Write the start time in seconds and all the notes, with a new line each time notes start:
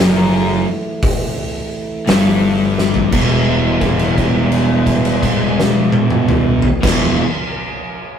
Already playing: F#2 E3 A3 E4
0.00 F#1 F#2
1.03 kick, open hi-hat
2.06 G1 G2, snare, open hi-hat
2.78 snare
2.94 floor tom
3.10 E1 E2 E3 G3 B3 E4, kick, crash
3.15 B2 E3 E4
3.81 kick, crash
3.99 crash
4.18 kick, crash
4.52 crash
4.86 kick, crash
5.05 crash
5.23 kick, crash
5.60 snare
5.92 high tom
6.10 mid tom
6.28 mid tom
6.62 floor tom
6.81 E1 E2 B2 E3 G3 B3 E4, kick, crash
6.85 E3, snare